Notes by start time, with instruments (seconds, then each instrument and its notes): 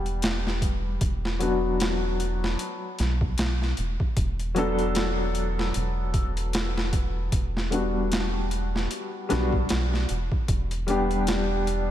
Already playing: analog synth bass E1, felt piano G3 B3 D4 G4
0.06 closed hi-hat
0.22 snare, closed hi-hat
0.47 snare
0.62 kick, closed hi-hat
1.01 analog synth bass E1, kick, closed hi-hat
1.25 snare
1.39 felt piano F#3 B3 D4 F#4, closed hi-hat
1.80 snare, closed hi-hat
2.20 closed hi-hat
2.44 snare
2.59 closed hi-hat
2.99 analog synth bass B1, snare, closed hi-hat
3.21 kick
3.38 analog synth bass B1, snare, closed hi-hat
3.62 snare
3.77 analog synth bass E1, closed hi-hat
4.00 kick
4.17 analog synth bass E1, kick, closed hi-hat
4.39 closed hi-hat
4.55 felt piano F#3 B3 D4 A4, closed hi-hat
4.79 closed hi-hat
4.95 snare, closed hi-hat
5.35 closed hi-hat
5.59 snare
5.74 analog synth bass E1, closed hi-hat
6.14 kick, closed hi-hat
6.37 closed hi-hat
6.53 snare, closed hi-hat
6.77 snare
6.93 kick, closed hi-hat
7.32 analog synth bass E1, kick, closed hi-hat
7.57 snare
7.70 felt piano G3 B3 D4 F#4, closed hi-hat
8.12 snare, closed hi-hat
8.51 closed hi-hat
8.76 snare
8.91 closed hi-hat
9.29 analog synth bass B1, felt piano G3 B3 D4 F#4, snare, closed hi-hat
9.53 kick
9.69 analog synth bass B1, snare, closed hi-hat
9.94 snare
10.09 analog synth bass E1, closed hi-hat
10.32 kick
10.48 analog synth bass E1, kick, closed hi-hat
10.71 closed hi-hat
10.87 felt piano G3 B3 D4 G4, closed hi-hat
11.11 closed hi-hat
11.27 snare, closed hi-hat
11.67 closed hi-hat